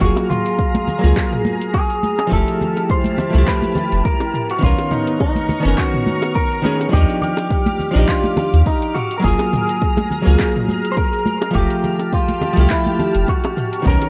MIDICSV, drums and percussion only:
0, 0, Header, 1, 2, 480
1, 0, Start_track
1, 0, Tempo, 576923
1, 8, Time_signature, 4, 2, 24, 8
1, 11725, End_track
2, 0, Start_track
2, 0, Title_t, "Drums"
2, 9, Note_on_c, 9, 36, 106
2, 19, Note_on_c, 9, 82, 47
2, 92, Note_off_c, 9, 36, 0
2, 102, Note_off_c, 9, 82, 0
2, 137, Note_on_c, 9, 60, 72
2, 142, Note_on_c, 9, 42, 45
2, 221, Note_off_c, 9, 60, 0
2, 225, Note_off_c, 9, 42, 0
2, 251, Note_on_c, 9, 45, 58
2, 254, Note_on_c, 9, 64, 70
2, 257, Note_on_c, 9, 82, 83
2, 334, Note_off_c, 9, 45, 0
2, 337, Note_off_c, 9, 64, 0
2, 340, Note_off_c, 9, 82, 0
2, 381, Note_on_c, 9, 42, 55
2, 388, Note_on_c, 9, 82, 31
2, 465, Note_off_c, 9, 42, 0
2, 471, Note_off_c, 9, 82, 0
2, 488, Note_on_c, 9, 36, 111
2, 498, Note_on_c, 9, 82, 43
2, 571, Note_off_c, 9, 36, 0
2, 581, Note_off_c, 9, 82, 0
2, 620, Note_on_c, 9, 63, 94
2, 622, Note_on_c, 9, 60, 49
2, 623, Note_on_c, 9, 42, 47
2, 629, Note_on_c, 9, 82, 32
2, 703, Note_off_c, 9, 63, 0
2, 705, Note_off_c, 9, 60, 0
2, 706, Note_off_c, 9, 42, 0
2, 712, Note_off_c, 9, 82, 0
2, 728, Note_on_c, 9, 63, 54
2, 729, Note_on_c, 9, 64, 79
2, 736, Note_on_c, 9, 82, 80
2, 811, Note_off_c, 9, 63, 0
2, 812, Note_off_c, 9, 64, 0
2, 820, Note_off_c, 9, 82, 0
2, 865, Note_on_c, 9, 42, 57
2, 871, Note_on_c, 9, 82, 33
2, 948, Note_off_c, 9, 42, 0
2, 954, Note_off_c, 9, 82, 0
2, 968, Note_on_c, 9, 36, 105
2, 971, Note_on_c, 9, 60, 64
2, 976, Note_on_c, 9, 39, 75
2, 982, Note_on_c, 9, 82, 46
2, 1051, Note_off_c, 9, 36, 0
2, 1054, Note_off_c, 9, 60, 0
2, 1059, Note_off_c, 9, 39, 0
2, 1065, Note_off_c, 9, 82, 0
2, 1103, Note_on_c, 9, 42, 30
2, 1103, Note_on_c, 9, 45, 73
2, 1109, Note_on_c, 9, 82, 30
2, 1186, Note_off_c, 9, 42, 0
2, 1186, Note_off_c, 9, 45, 0
2, 1193, Note_off_c, 9, 82, 0
2, 1205, Note_on_c, 9, 63, 96
2, 1217, Note_on_c, 9, 82, 81
2, 1288, Note_off_c, 9, 63, 0
2, 1300, Note_off_c, 9, 82, 0
2, 1345, Note_on_c, 9, 42, 55
2, 1351, Note_on_c, 9, 82, 33
2, 1428, Note_off_c, 9, 42, 0
2, 1434, Note_off_c, 9, 82, 0
2, 1449, Note_on_c, 9, 36, 99
2, 1452, Note_on_c, 9, 60, 53
2, 1460, Note_on_c, 9, 82, 45
2, 1532, Note_off_c, 9, 36, 0
2, 1535, Note_off_c, 9, 60, 0
2, 1543, Note_off_c, 9, 82, 0
2, 1583, Note_on_c, 9, 42, 30
2, 1589, Note_on_c, 9, 82, 29
2, 1666, Note_off_c, 9, 42, 0
2, 1673, Note_off_c, 9, 82, 0
2, 1693, Note_on_c, 9, 63, 82
2, 1696, Note_on_c, 9, 82, 76
2, 1776, Note_off_c, 9, 63, 0
2, 1779, Note_off_c, 9, 82, 0
2, 1821, Note_on_c, 9, 60, 89
2, 1824, Note_on_c, 9, 42, 52
2, 1830, Note_on_c, 9, 82, 34
2, 1905, Note_off_c, 9, 60, 0
2, 1908, Note_off_c, 9, 42, 0
2, 1914, Note_off_c, 9, 82, 0
2, 1928, Note_on_c, 9, 36, 106
2, 1938, Note_on_c, 9, 82, 47
2, 2011, Note_off_c, 9, 36, 0
2, 2021, Note_off_c, 9, 82, 0
2, 2065, Note_on_c, 9, 42, 44
2, 2148, Note_off_c, 9, 42, 0
2, 2174, Note_on_c, 9, 64, 75
2, 2180, Note_on_c, 9, 82, 82
2, 2257, Note_off_c, 9, 64, 0
2, 2263, Note_off_c, 9, 82, 0
2, 2301, Note_on_c, 9, 60, 51
2, 2303, Note_on_c, 9, 42, 51
2, 2310, Note_on_c, 9, 82, 34
2, 2384, Note_off_c, 9, 60, 0
2, 2387, Note_off_c, 9, 42, 0
2, 2393, Note_off_c, 9, 82, 0
2, 2409, Note_on_c, 9, 36, 115
2, 2419, Note_on_c, 9, 82, 45
2, 2492, Note_off_c, 9, 36, 0
2, 2502, Note_off_c, 9, 82, 0
2, 2530, Note_on_c, 9, 63, 94
2, 2542, Note_on_c, 9, 42, 43
2, 2548, Note_on_c, 9, 82, 35
2, 2613, Note_off_c, 9, 63, 0
2, 2625, Note_off_c, 9, 42, 0
2, 2631, Note_off_c, 9, 82, 0
2, 2644, Note_on_c, 9, 64, 88
2, 2646, Note_on_c, 9, 60, 76
2, 2655, Note_on_c, 9, 82, 81
2, 2727, Note_off_c, 9, 64, 0
2, 2729, Note_off_c, 9, 60, 0
2, 2739, Note_off_c, 9, 82, 0
2, 2784, Note_on_c, 9, 42, 52
2, 2791, Note_on_c, 9, 82, 34
2, 2868, Note_off_c, 9, 42, 0
2, 2874, Note_off_c, 9, 82, 0
2, 2890, Note_on_c, 9, 36, 101
2, 2892, Note_on_c, 9, 39, 77
2, 2898, Note_on_c, 9, 82, 46
2, 2973, Note_off_c, 9, 36, 0
2, 2975, Note_off_c, 9, 39, 0
2, 2982, Note_off_c, 9, 82, 0
2, 3013, Note_on_c, 9, 63, 99
2, 3024, Note_on_c, 9, 42, 29
2, 3030, Note_on_c, 9, 82, 32
2, 3096, Note_off_c, 9, 63, 0
2, 3107, Note_off_c, 9, 42, 0
2, 3113, Note_off_c, 9, 82, 0
2, 3122, Note_on_c, 9, 64, 93
2, 3125, Note_on_c, 9, 60, 54
2, 3140, Note_on_c, 9, 82, 84
2, 3205, Note_off_c, 9, 64, 0
2, 3208, Note_off_c, 9, 60, 0
2, 3223, Note_off_c, 9, 82, 0
2, 3262, Note_on_c, 9, 42, 52
2, 3268, Note_on_c, 9, 82, 35
2, 3345, Note_off_c, 9, 42, 0
2, 3351, Note_off_c, 9, 82, 0
2, 3369, Note_on_c, 9, 36, 104
2, 3378, Note_on_c, 9, 82, 47
2, 3452, Note_off_c, 9, 36, 0
2, 3461, Note_off_c, 9, 82, 0
2, 3496, Note_on_c, 9, 60, 75
2, 3502, Note_on_c, 9, 42, 29
2, 3508, Note_on_c, 9, 82, 30
2, 3580, Note_off_c, 9, 60, 0
2, 3585, Note_off_c, 9, 42, 0
2, 3591, Note_off_c, 9, 82, 0
2, 3610, Note_on_c, 9, 45, 53
2, 3616, Note_on_c, 9, 82, 80
2, 3693, Note_off_c, 9, 45, 0
2, 3699, Note_off_c, 9, 82, 0
2, 3742, Note_on_c, 9, 42, 54
2, 3748, Note_on_c, 9, 82, 33
2, 3825, Note_off_c, 9, 42, 0
2, 3831, Note_off_c, 9, 82, 0
2, 3848, Note_on_c, 9, 36, 107
2, 3857, Note_on_c, 9, 82, 47
2, 3932, Note_off_c, 9, 36, 0
2, 3940, Note_off_c, 9, 82, 0
2, 3981, Note_on_c, 9, 60, 53
2, 3982, Note_on_c, 9, 42, 44
2, 4064, Note_off_c, 9, 60, 0
2, 4065, Note_off_c, 9, 42, 0
2, 4087, Note_on_c, 9, 64, 76
2, 4090, Note_on_c, 9, 45, 62
2, 4096, Note_on_c, 9, 82, 83
2, 4170, Note_off_c, 9, 64, 0
2, 4173, Note_off_c, 9, 45, 0
2, 4179, Note_off_c, 9, 82, 0
2, 4222, Note_on_c, 9, 42, 52
2, 4228, Note_on_c, 9, 82, 33
2, 4305, Note_off_c, 9, 42, 0
2, 4311, Note_off_c, 9, 82, 0
2, 4329, Note_on_c, 9, 36, 105
2, 4329, Note_on_c, 9, 60, 68
2, 4337, Note_on_c, 9, 82, 42
2, 4412, Note_off_c, 9, 36, 0
2, 4412, Note_off_c, 9, 60, 0
2, 4420, Note_off_c, 9, 82, 0
2, 4457, Note_on_c, 9, 63, 90
2, 4463, Note_on_c, 9, 42, 42
2, 4469, Note_on_c, 9, 82, 34
2, 4540, Note_off_c, 9, 63, 0
2, 4546, Note_off_c, 9, 42, 0
2, 4552, Note_off_c, 9, 82, 0
2, 4569, Note_on_c, 9, 64, 85
2, 4570, Note_on_c, 9, 63, 60
2, 4576, Note_on_c, 9, 82, 82
2, 4652, Note_off_c, 9, 64, 0
2, 4653, Note_off_c, 9, 63, 0
2, 4659, Note_off_c, 9, 82, 0
2, 4702, Note_on_c, 9, 42, 49
2, 4708, Note_on_c, 9, 82, 36
2, 4785, Note_off_c, 9, 42, 0
2, 4791, Note_off_c, 9, 82, 0
2, 4809, Note_on_c, 9, 36, 101
2, 4812, Note_on_c, 9, 39, 71
2, 4812, Note_on_c, 9, 60, 48
2, 4818, Note_on_c, 9, 82, 45
2, 4892, Note_off_c, 9, 36, 0
2, 4895, Note_off_c, 9, 39, 0
2, 4895, Note_off_c, 9, 60, 0
2, 4901, Note_off_c, 9, 82, 0
2, 4942, Note_on_c, 9, 42, 28
2, 4942, Note_on_c, 9, 45, 72
2, 4948, Note_on_c, 9, 82, 28
2, 5025, Note_off_c, 9, 42, 0
2, 5025, Note_off_c, 9, 45, 0
2, 5031, Note_off_c, 9, 82, 0
2, 5048, Note_on_c, 9, 63, 91
2, 5056, Note_on_c, 9, 82, 83
2, 5131, Note_off_c, 9, 63, 0
2, 5139, Note_off_c, 9, 82, 0
2, 5177, Note_on_c, 9, 60, 77
2, 5182, Note_on_c, 9, 42, 53
2, 5188, Note_on_c, 9, 82, 35
2, 5260, Note_off_c, 9, 60, 0
2, 5265, Note_off_c, 9, 42, 0
2, 5271, Note_off_c, 9, 82, 0
2, 5288, Note_on_c, 9, 36, 97
2, 5296, Note_on_c, 9, 82, 42
2, 5372, Note_off_c, 9, 36, 0
2, 5379, Note_off_c, 9, 82, 0
2, 5423, Note_on_c, 9, 42, 26
2, 5429, Note_on_c, 9, 82, 29
2, 5506, Note_off_c, 9, 42, 0
2, 5512, Note_off_c, 9, 82, 0
2, 5531, Note_on_c, 9, 63, 84
2, 5538, Note_on_c, 9, 82, 79
2, 5615, Note_off_c, 9, 63, 0
2, 5621, Note_off_c, 9, 82, 0
2, 5663, Note_on_c, 9, 60, 48
2, 5666, Note_on_c, 9, 42, 51
2, 5673, Note_on_c, 9, 82, 34
2, 5746, Note_off_c, 9, 60, 0
2, 5750, Note_off_c, 9, 42, 0
2, 5756, Note_off_c, 9, 82, 0
2, 5767, Note_on_c, 9, 36, 100
2, 5767, Note_on_c, 9, 60, 43
2, 5779, Note_on_c, 9, 82, 47
2, 5850, Note_off_c, 9, 36, 0
2, 5850, Note_off_c, 9, 60, 0
2, 5862, Note_off_c, 9, 82, 0
2, 5906, Note_on_c, 9, 42, 42
2, 5989, Note_off_c, 9, 42, 0
2, 6006, Note_on_c, 9, 64, 71
2, 6019, Note_on_c, 9, 82, 76
2, 6089, Note_off_c, 9, 64, 0
2, 6102, Note_off_c, 9, 82, 0
2, 6134, Note_on_c, 9, 60, 74
2, 6146, Note_on_c, 9, 42, 51
2, 6152, Note_on_c, 9, 82, 31
2, 6217, Note_off_c, 9, 60, 0
2, 6229, Note_off_c, 9, 42, 0
2, 6235, Note_off_c, 9, 82, 0
2, 6246, Note_on_c, 9, 36, 104
2, 6257, Note_on_c, 9, 82, 42
2, 6330, Note_off_c, 9, 36, 0
2, 6341, Note_off_c, 9, 82, 0
2, 6377, Note_on_c, 9, 63, 97
2, 6383, Note_on_c, 9, 42, 45
2, 6389, Note_on_c, 9, 82, 31
2, 6460, Note_off_c, 9, 63, 0
2, 6466, Note_off_c, 9, 42, 0
2, 6472, Note_off_c, 9, 82, 0
2, 6488, Note_on_c, 9, 64, 73
2, 6497, Note_on_c, 9, 82, 78
2, 6571, Note_off_c, 9, 64, 0
2, 6580, Note_off_c, 9, 82, 0
2, 6616, Note_on_c, 9, 60, 46
2, 6626, Note_on_c, 9, 42, 52
2, 6632, Note_on_c, 9, 82, 32
2, 6699, Note_off_c, 9, 60, 0
2, 6709, Note_off_c, 9, 42, 0
2, 6715, Note_off_c, 9, 82, 0
2, 6726, Note_on_c, 9, 36, 103
2, 6732, Note_on_c, 9, 39, 73
2, 6738, Note_on_c, 9, 82, 45
2, 6810, Note_off_c, 9, 36, 0
2, 6815, Note_off_c, 9, 39, 0
2, 6822, Note_off_c, 9, 82, 0
2, 6855, Note_on_c, 9, 63, 85
2, 6865, Note_on_c, 9, 42, 29
2, 6871, Note_on_c, 9, 82, 29
2, 6939, Note_off_c, 9, 63, 0
2, 6948, Note_off_c, 9, 42, 0
2, 6954, Note_off_c, 9, 82, 0
2, 6964, Note_on_c, 9, 64, 97
2, 6967, Note_on_c, 9, 60, 69
2, 6979, Note_on_c, 9, 82, 76
2, 7048, Note_off_c, 9, 64, 0
2, 7050, Note_off_c, 9, 60, 0
2, 7062, Note_off_c, 9, 82, 0
2, 7105, Note_on_c, 9, 42, 53
2, 7111, Note_on_c, 9, 82, 34
2, 7188, Note_off_c, 9, 42, 0
2, 7194, Note_off_c, 9, 82, 0
2, 7207, Note_on_c, 9, 36, 96
2, 7221, Note_on_c, 9, 82, 44
2, 7290, Note_off_c, 9, 36, 0
2, 7304, Note_off_c, 9, 82, 0
2, 7342, Note_on_c, 9, 42, 27
2, 7348, Note_on_c, 9, 82, 29
2, 7425, Note_off_c, 9, 42, 0
2, 7431, Note_off_c, 9, 82, 0
2, 7449, Note_on_c, 9, 60, 53
2, 7450, Note_on_c, 9, 45, 58
2, 7457, Note_on_c, 9, 82, 76
2, 7532, Note_off_c, 9, 60, 0
2, 7534, Note_off_c, 9, 45, 0
2, 7540, Note_off_c, 9, 82, 0
2, 7580, Note_on_c, 9, 42, 51
2, 7586, Note_on_c, 9, 82, 31
2, 7663, Note_off_c, 9, 42, 0
2, 7669, Note_off_c, 9, 82, 0
2, 7687, Note_on_c, 9, 36, 98
2, 7693, Note_on_c, 9, 82, 45
2, 7770, Note_off_c, 9, 36, 0
2, 7776, Note_off_c, 9, 82, 0
2, 7814, Note_on_c, 9, 60, 75
2, 7820, Note_on_c, 9, 42, 45
2, 7897, Note_off_c, 9, 60, 0
2, 7904, Note_off_c, 9, 42, 0
2, 7929, Note_on_c, 9, 45, 67
2, 7931, Note_on_c, 9, 64, 70
2, 7935, Note_on_c, 9, 82, 77
2, 8012, Note_off_c, 9, 45, 0
2, 8014, Note_off_c, 9, 64, 0
2, 8018, Note_off_c, 9, 82, 0
2, 8062, Note_on_c, 9, 42, 51
2, 8069, Note_on_c, 9, 82, 30
2, 8146, Note_off_c, 9, 42, 0
2, 8152, Note_off_c, 9, 82, 0
2, 8167, Note_on_c, 9, 36, 105
2, 8177, Note_on_c, 9, 82, 43
2, 8250, Note_off_c, 9, 36, 0
2, 8260, Note_off_c, 9, 82, 0
2, 8296, Note_on_c, 9, 60, 58
2, 8296, Note_on_c, 9, 63, 99
2, 8301, Note_on_c, 9, 42, 46
2, 8307, Note_on_c, 9, 82, 31
2, 8379, Note_off_c, 9, 60, 0
2, 8379, Note_off_c, 9, 63, 0
2, 8384, Note_off_c, 9, 42, 0
2, 8390, Note_off_c, 9, 82, 0
2, 8405, Note_on_c, 9, 63, 59
2, 8409, Note_on_c, 9, 64, 79
2, 8415, Note_on_c, 9, 82, 74
2, 8488, Note_off_c, 9, 63, 0
2, 8492, Note_off_c, 9, 64, 0
2, 8498, Note_off_c, 9, 82, 0
2, 8545, Note_on_c, 9, 42, 53
2, 8551, Note_on_c, 9, 82, 34
2, 8628, Note_off_c, 9, 42, 0
2, 8634, Note_off_c, 9, 82, 0
2, 8646, Note_on_c, 9, 60, 71
2, 8648, Note_on_c, 9, 36, 96
2, 8651, Note_on_c, 9, 39, 73
2, 8657, Note_on_c, 9, 82, 40
2, 8729, Note_off_c, 9, 60, 0
2, 8732, Note_off_c, 9, 36, 0
2, 8734, Note_off_c, 9, 39, 0
2, 8740, Note_off_c, 9, 82, 0
2, 8784, Note_on_c, 9, 42, 28
2, 8784, Note_on_c, 9, 45, 74
2, 8791, Note_on_c, 9, 82, 28
2, 8868, Note_off_c, 9, 42, 0
2, 8868, Note_off_c, 9, 45, 0
2, 8874, Note_off_c, 9, 82, 0
2, 8889, Note_on_c, 9, 63, 93
2, 8899, Note_on_c, 9, 82, 73
2, 8973, Note_off_c, 9, 63, 0
2, 8982, Note_off_c, 9, 82, 0
2, 9026, Note_on_c, 9, 42, 57
2, 9033, Note_on_c, 9, 82, 31
2, 9110, Note_off_c, 9, 42, 0
2, 9116, Note_off_c, 9, 82, 0
2, 9124, Note_on_c, 9, 60, 46
2, 9129, Note_on_c, 9, 36, 99
2, 9137, Note_on_c, 9, 82, 42
2, 9207, Note_off_c, 9, 60, 0
2, 9212, Note_off_c, 9, 36, 0
2, 9220, Note_off_c, 9, 82, 0
2, 9263, Note_on_c, 9, 42, 28
2, 9269, Note_on_c, 9, 82, 30
2, 9346, Note_off_c, 9, 42, 0
2, 9352, Note_off_c, 9, 82, 0
2, 9368, Note_on_c, 9, 63, 85
2, 9377, Note_on_c, 9, 82, 73
2, 9451, Note_off_c, 9, 63, 0
2, 9461, Note_off_c, 9, 82, 0
2, 9500, Note_on_c, 9, 60, 84
2, 9502, Note_on_c, 9, 42, 52
2, 9509, Note_on_c, 9, 82, 31
2, 9583, Note_off_c, 9, 60, 0
2, 9586, Note_off_c, 9, 42, 0
2, 9592, Note_off_c, 9, 82, 0
2, 9609, Note_on_c, 9, 36, 102
2, 9617, Note_on_c, 9, 82, 45
2, 9693, Note_off_c, 9, 36, 0
2, 9701, Note_off_c, 9, 82, 0
2, 9740, Note_on_c, 9, 42, 47
2, 9823, Note_off_c, 9, 42, 0
2, 9851, Note_on_c, 9, 64, 64
2, 9853, Note_on_c, 9, 82, 73
2, 9934, Note_off_c, 9, 64, 0
2, 9936, Note_off_c, 9, 82, 0
2, 9979, Note_on_c, 9, 60, 55
2, 9982, Note_on_c, 9, 42, 56
2, 9988, Note_on_c, 9, 82, 31
2, 10062, Note_off_c, 9, 60, 0
2, 10065, Note_off_c, 9, 42, 0
2, 10071, Note_off_c, 9, 82, 0
2, 10090, Note_on_c, 9, 36, 103
2, 10098, Note_on_c, 9, 82, 41
2, 10173, Note_off_c, 9, 36, 0
2, 10181, Note_off_c, 9, 82, 0
2, 10221, Note_on_c, 9, 42, 48
2, 10223, Note_on_c, 9, 63, 85
2, 10228, Note_on_c, 9, 82, 31
2, 10305, Note_off_c, 9, 42, 0
2, 10306, Note_off_c, 9, 63, 0
2, 10311, Note_off_c, 9, 82, 0
2, 10329, Note_on_c, 9, 64, 77
2, 10331, Note_on_c, 9, 60, 73
2, 10337, Note_on_c, 9, 82, 75
2, 10412, Note_off_c, 9, 64, 0
2, 10415, Note_off_c, 9, 60, 0
2, 10420, Note_off_c, 9, 82, 0
2, 10461, Note_on_c, 9, 42, 55
2, 10467, Note_on_c, 9, 82, 32
2, 10544, Note_off_c, 9, 42, 0
2, 10550, Note_off_c, 9, 82, 0
2, 10567, Note_on_c, 9, 39, 78
2, 10571, Note_on_c, 9, 36, 93
2, 10574, Note_on_c, 9, 82, 42
2, 10651, Note_off_c, 9, 39, 0
2, 10654, Note_off_c, 9, 36, 0
2, 10657, Note_off_c, 9, 82, 0
2, 10698, Note_on_c, 9, 42, 32
2, 10704, Note_on_c, 9, 63, 85
2, 10704, Note_on_c, 9, 82, 28
2, 10781, Note_off_c, 9, 42, 0
2, 10787, Note_off_c, 9, 63, 0
2, 10788, Note_off_c, 9, 82, 0
2, 10810, Note_on_c, 9, 64, 79
2, 10812, Note_on_c, 9, 60, 58
2, 10814, Note_on_c, 9, 82, 70
2, 10894, Note_off_c, 9, 64, 0
2, 10895, Note_off_c, 9, 60, 0
2, 10898, Note_off_c, 9, 82, 0
2, 10938, Note_on_c, 9, 42, 56
2, 10945, Note_on_c, 9, 82, 32
2, 11022, Note_off_c, 9, 42, 0
2, 11028, Note_off_c, 9, 82, 0
2, 11050, Note_on_c, 9, 36, 94
2, 11054, Note_on_c, 9, 82, 40
2, 11133, Note_off_c, 9, 36, 0
2, 11137, Note_off_c, 9, 82, 0
2, 11180, Note_on_c, 9, 42, 30
2, 11186, Note_on_c, 9, 82, 27
2, 11187, Note_on_c, 9, 60, 83
2, 11263, Note_off_c, 9, 42, 0
2, 11269, Note_off_c, 9, 82, 0
2, 11270, Note_off_c, 9, 60, 0
2, 11291, Note_on_c, 9, 45, 64
2, 11297, Note_on_c, 9, 82, 74
2, 11374, Note_off_c, 9, 45, 0
2, 11380, Note_off_c, 9, 82, 0
2, 11422, Note_on_c, 9, 42, 58
2, 11428, Note_on_c, 9, 82, 31
2, 11505, Note_off_c, 9, 42, 0
2, 11511, Note_off_c, 9, 82, 0
2, 11529, Note_on_c, 9, 36, 103
2, 11536, Note_on_c, 9, 82, 47
2, 11612, Note_off_c, 9, 36, 0
2, 11619, Note_off_c, 9, 82, 0
2, 11662, Note_on_c, 9, 42, 46
2, 11665, Note_on_c, 9, 60, 52
2, 11668, Note_on_c, 9, 82, 31
2, 11725, Note_off_c, 9, 42, 0
2, 11725, Note_off_c, 9, 60, 0
2, 11725, Note_off_c, 9, 82, 0
2, 11725, End_track
0, 0, End_of_file